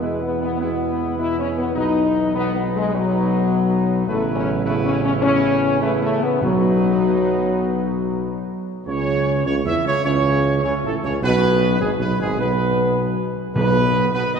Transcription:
Already playing: tuba E2
0.00 trombone section B2 G#3, french horn section G#3, trumpet section E4 B4
0.21 french horn section B3
0.41 french horn section B3
0.59 trombone section B2 G#3, french horn section B3, trumpet section E4 B4
1.17 trombone section B2 G#3, french horn section E4, trumpet section E4 B4
1.39 french horn section C#4
1.58 french horn section B3
1.75 tuba B1, trombone section B2 B3, french horn section D#4, trumpet section D#4 B4
2.34 trombone section B2 B3, french horn section B3, trumpet section D#4 B4
2.55 french horn section B3
2.75 french horn section G#3
2.92 trombone section B2 B3, french horn section F#3, trumpet section D#4 B4
4.06 tuba A1, trombone section C#3 B3, french horn section A3, trumpet section E4 B4
4.35 french horn section C#4
4.64 trombone section C#3 B3, french horn section A3, trumpet section E4 B4
4.84 french horn section C#4
5.03 french horn section C#4
5.21 trombone section C#3 B3, french horn section C#4, trumpet section E4 B4
5.81 trombone section C#3 B3, french horn section A3, trumpet section E4 B4
6.02 french horn section A3
6.21 french horn section B3
6.41 tuba B1, trombone section B2 B3, timpani B2, french horn section F#3, trumpet section D#4 B4
8.85 tuba C#2, trombone section C#3, french horn section C#4, trumpet section C#5
9.46 tuba C#2, trombone section C#3, french horn section C#4, trumpet section C#5
9.64 tuba E2, trombone section E3, french horn section E4, trumpet section E5
9.84 tuba C#2, trombone section C#3, french horn section C#4, trumpet section C#5
10.04 tuba C#2, trombone section C#3, french horn section C#4, trumpet section C#5
10.63 tuba C#2, trombone section C#3, french horn section C#4, trumpet section C#5
10.83 tuba A1, trombone section A2, french horn section A3, trumpet section A4
11.03 tuba C#2, trombone section C#3, french horn section C#4, trumpet section C#5
11.22 tuba B1, trombone section B2, french horn section B3, trumpet section B4
11.80 tuba G#1, trombone section G#2, french horn section G#3, trumpet section G#4
11.99 tuba B1, trombone section B2, french horn section B3, trumpet section B4
12.19 tuba G#1, trombone section G#2, french horn section G#3, trumpet section G#4
12.39 tuba B1, trombone section B2, french horn section B3, trumpet section B4
13.55 tuba B1, trombone section B2, timpani B2, french horn section B3, trumpet section B4
14.14 trombone section B2, french horn section B3, trumpet section B4
14.33 trombone section D#3, french horn section D#4, trumpet section D#5

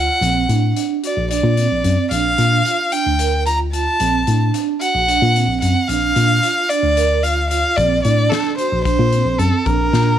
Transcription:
Already playing: vibraphone F4, violin F#5
0.22 tine electric piano A#1, vibraphone C4, closed hi-hat
0.49 tine electric piano A2, vibraphone D4, closed hi-hat
0.76 vibraphone D4, closed hi-hat
1.03 vibraphone F#4, violin D5, closed hi-hat
1.17 tine electric piano A#1
1.31 vibraphone D4, violin D5, closed hi-hat
1.43 tine electric piano A#2
1.57 vibraphone C4, closed hi-hat
1.71 tine electric piano A#1
1.84 tine electric piano F#2, vibraphone C4, closed hi-hat
2.11 tine electric piano A#1, vibraphone D4, violin F5, closed hi-hat
2.38 tine electric piano A#2, vibraphone D4, closed hi-hat
2.65 vibraphone F4, closed hi-hat
2.92 vibraphone D4, violin G5, closed hi-hat
3.06 tine electric piano D2
3.19 vibraphone A#4, closed hi-hat
3.46 vibraphone F4, violin A#5, closed hi-hat
3.73 vibraphone F4, violin A5, closed hi-hat
3.99 tine electric piano A#1, vibraphone C4, closed hi-hat
4.27 tine electric piano A2, vibraphone D4, closed hi-hat
4.53 vibraphone D4, closed hi-hat
4.80 vibraphone F#4, violin F#5, closed hi-hat
4.95 tine electric piano A#1
5.08 vibraphone D4, closed hi-hat
5.22 tine electric piano A#2
5.35 vibraphone C4, closed hi-hat
5.49 tine electric piano A#1
5.61 tine electric piano F#2, vibraphone C4, violin F#5, closed hi-hat
5.88 tine electric piano A#1, vibraphone D4, violin F5, closed hi-hat
6.16 tine electric piano A#2, vibraphone D4, closed hi-hat
6.43 vibraphone F4, closed hi-hat
6.69 vibraphone D4, violin D5, closed hi-hat
6.83 tine electric piano D2
6.97 vibraphone A#4, closed hi-hat
7.23 vibraphone F4, violin F5, closed hi-hat
7.50 vibraphone F4, violin F5, closed hi-hat
7.77 tine electric piano A#1, vibraphone C4, violin D5, kick, closed hi-hat
8.03 tine electric piano A2, vibraphone D4, violin D5, closed hi-hat
8.30 vibraphone D4, violin A4, snare, closed hi-hat
8.58 vibraphone F#4, violin C5, closed hi-hat
8.72 tine electric piano A#1
8.84 vibraphone D4, violin C5, kick, closed hi-hat
8.99 tine electric piano A#2
9.13 vibraphone C4, closed hi-hat
9.26 tine electric piano A#1
9.39 tine electric piano F#2, vibraphone C4, violin A4, closed hi-hat
9.65 tine electric piano A#1, vibraphone D4, violin A#4, kick, closed hi-hat
9.93 tine electric piano A#2, vibraphone D4, snare

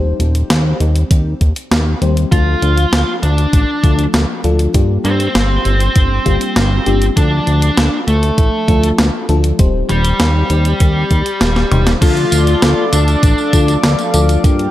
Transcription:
Already playing: analog synth bass D#1, fm electric piano G3 C4 D#4 G4 C5
0.20 analog synth bass D#1, closed hi-hat
0.35 closed hi-hat
0.50 analog synth bass D#2, snare, closed hi-hat
0.80 analog synth bass D#2, closed hi-hat
0.96 closed hi-hat
1.11 analog synth bass D#2, kick, closed hi-hat
1.41 analog synth bass D#2, kick, closed hi-hat
1.56 closed hi-hat
1.71 analog synth bass D#2, snare, closed hi-hat
2.02 analog synth bass D#2, fm electric piano G3 C4 D#4 G4 C5, closed hi-hat
2.17 closed hi-hat
2.32 analog synth bass D2, fm electric piano F3 A3 D4 F4 A4, lead electric guitar F4, kick, closed hi-hat
2.62 analog synth bass D2, closed hi-hat
2.77 closed hi-hat
2.92 analog synth bass D2, snare, closed hi-hat
3.23 analog synth bass D2, lead electric guitar D4, closed hi-hat
3.38 closed hi-hat
3.53 analog synth bass A1, kick, closed hi-hat
3.83 analog synth bass D2, fm electric piano F3 A3 D4 F4 A4, kick, closed hi-hat
3.99 closed hi-hat
4.14 analog synth bass D2, snare, closed hi-hat
4.44 analog synth bass D2, fm electric piano F3 A3 D4 F4 A4, closed hi-hat
4.59 closed hi-hat
4.74 analog synth bass G2, fm electric piano G3 A#3 D4 F4 G4, kick, closed hi-hat
5.05 analog synth bass G2, lead electric guitar C4, closed hi-hat
5.20 closed hi-hat
5.35 analog synth bass G1, snare, closed hi-hat
5.65 analog synth bass G1, closed hi-hat
5.80 closed hi-hat
5.96 analog synth bass G1, kick, closed hi-hat
6.26 analog synth bass G1, fm electric piano G3 A#3 D4 F4 G4, kick, closed hi-hat
6.41 closed hi-hat
6.56 analog synth bass G1, snare, closed hi-hat
6.86 analog synth bass G1, fm electric piano G3 A#3 D4 F4 G4, closed hi-hat
7.02 closed hi-hat
7.17 analog synth bass D2, fm electric piano F3 A3 D4 F4 A4, lead electric guitar D4, kick, closed hi-hat
7.47 analog synth bass D2, closed hi-hat
7.62 closed hi-hat
7.77 analog synth bass D2, snare, closed hi-hat
8.08 analog synth bass D2, lead electric guitar A3, closed hi-hat
8.23 closed hi-hat
8.38 analog synth bass A1, kick, closed hi-hat
8.68 analog synth bass D2, fm electric piano F3 A3 D4 F4 A4, kick, closed hi-hat
8.83 closed hi-hat
8.98 analog synth bass D2, snare, closed hi-hat
9.29 analog synth bass D2, fm electric piano F3 A3 D4 F4 A4, closed hi-hat
9.44 closed hi-hat
9.59 analog synth bass D#1, fm electric piano G3 C4 D#4 G4 C5, kick, closed hi-hat
9.89 analog synth bass D#1, lead electric guitar G3, closed hi-hat
10.05 closed hi-hat
10.20 analog synth bass D#2, snare, closed hi-hat
10.50 analog synth bass D#2, closed hi-hat
10.65 closed hi-hat
10.80 analog synth bass D#2, kick, closed hi-hat
11.11 analog synth bass D#2, kick, closed hi-hat
11.26 closed hi-hat
11.41 analog synth bass D#1, snare, closed hi-hat
11.56 snare
11.71 analog synth bass D#1, fm electric piano G3 C4 D#4 G4 C5, closed hi-hat, mid tom
11.87 snare, closed hi-hat
12.02 analog synth bass D2, fm electric piano F3 A3 D4 F4 A4, lead electric guitar F4, analog synth pad A4 D5 F5 D6, kick, closed hi-hat, crash, tambourine
12.17 closed hi-hat
12.32 analog synth bass D2, closed hi-hat, tambourine
12.47 closed hi-hat, tambourine
12.62 analog synth bass D2, snare, closed hi-hat, tambourine
12.92 analog synth bass D2, lead electric guitar D4, closed hi-hat, tambourine
13.08 closed hi-hat, tambourine
13.23 analog synth bass A1, kick, closed hi-hat, tambourine
13.38 tambourine
13.53 analog synth bass D2, fm electric piano F3 A3 D4 F4 A4, kick, closed hi-hat, tambourine
13.68 closed hi-hat, tambourine
13.83 analog synth bass D2, snare, closed hi-hat, tambourine
13.99 closed hi-hat, tambourine
14.14 analog synth bass D2, fm electric piano F3 A3 D4 F4 A4, closed hi-hat, tambourine
14.29 closed hi-hat, tambourine
14.44 analog synth bass G2, fm electric piano G3 A#3 D4 F4 G4, analog synth pad A#4 G5 D6, kick, closed hi-hat, tambourine
14.59 closed hi-hat

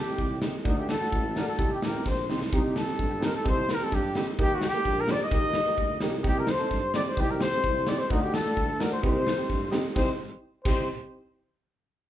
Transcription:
Already playing: accordion G4
0.00 cornet G4
0.07 upright piano C4 D#4 G4
0.18 tuba C2, kick
0.42 upright piano C4 D#4 G4, snare
0.64 tuba D2, upright piano A3 D4 F#4, cornet D#4, accordion D#4, kick
0.78 cornet G4, accordion G4
0.89 cornet A4, accordion A4, snare
1.00 upright piano A3 D4 F#4, snare
1.12 tuba A1, kick
1.36 upright piano A3 D4 F#4, cornet A#4, snare
1.48 cornet A4, accordion A4
1.58 tuba C2, upright piano C4 D#4 G4, kick
1.71 cornet G4, accordion G4
1.82 tuba A1, cornet A#4, snare
1.95 upright piano C4 D#4 G4
2.06 tuba A#1, accordion C5, cornet C5, kick, snare
2.29 tuba C2, upright piano C4 D#4 G4, snare
2.42 snare
2.53 tuba C2, upright piano C4 D#4 G4, cornet D#4, accordion D#4, kick
2.65 cornet G4
2.76 cornet A4, accordion A4, snare
2.86 upright piano C4 D#4 G4, snare
2.99 tuba G2, accordion A4, kick
3.08 accordion G4
3.13 accordion A4
3.20 upright piano C4 D#4 G4, snare
3.24 accordion A#4, cornet A#4
3.35 accordion A4, cornet A4
3.44 tuba C2, upright piano C4 D#4 G4, accordion C5, kick
3.49 cornet C5
3.69 accordion A#4, cornet A#4, snare
3.80 upright piano C4 D#4 G4, accordion A4, cornet A4
3.92 tuba G2, accordion G4, cornet G4, kick
4.15 upright piano C4 D#4 G4, snare
4.39 tuba D#2, upright piano A#3 D#4 G4, accordion G4, cornet G4, kick
4.54 cornet F#4
4.61 accordion G4, snare
4.67 cornet G4
4.74 upright piano A#3 D#4 G4
4.85 tuba A#1, kick, snare
4.98 accordion A#4, cornet A#4
5.08 upright piano A#3 D#4 G4, accordion C5 D5, cornet D5, snare
5.15 accordion D5
5.21 accordion D#5, cornet D#5
5.31 tuba D#2, upright piano A#3 D#4 G4, kick
5.53 snare
5.66 upright piano A#3 D#4 G4
5.78 tuba D2, kick
6.00 tuba C2, upright piano A#3 D#4 G4, snare
6.23 tuba C2, upright piano C4 D#4 G4, accordion G4, kick
6.27 cornet G4
6.38 accordion A#4, cornet A#4
6.47 accordion C5, cornet C5, snare
6.59 upright piano C4 D#4 A4
6.71 tuba G2, kick, snare
6.94 upright piano C4 D#4 G4, accordion D5, cornet D5, snare
7.05 cornet D5
7.09 cornet C5
7.17 tuba C2, upright piano C4 D#4 G4, accordion G4, cornet G4, kick
7.30 cornet A#4
7.41 accordion C5, cornet C5, snare
7.54 upright piano C4 D#4 G4
7.64 tuba C2, kick
7.87 upright piano C4 D#4 G4, cornet D5, accordion D5, snare
7.99 cornet C5, accordion C5
8.10 tuba D2, upright piano A3 D4 F#4, cornet D#4, accordion D#4, kick
8.22 cornet G4, accordion G4
8.34 cornet A4, accordion A4, snare
8.45 upright piano A3 D4 F#4, snare
8.57 tuba D2, kick
8.79 upright piano A3 D4 F#4, cornet A#4, accordion A#4, snare
8.91 cornet C5, accordion C5
9.02 tuba C2, upright piano C4 D#4 G4, cornet C5, accordion C5, kick
9.11 accordion A#4
9.18 accordion C5
9.27 snare
9.37 upright piano C4 D#4 G4
9.49 tuba G2, kick, snare
9.71 upright piano C4 D#4 G4, snare
9.95 tuba C2, upright piano C4 D#4 G4, cornet C5, accordion C5, kick, snare
10.63 tuba C2, upright piano C4 D#4 G4, cornet C5, accordion C5, kick, crash

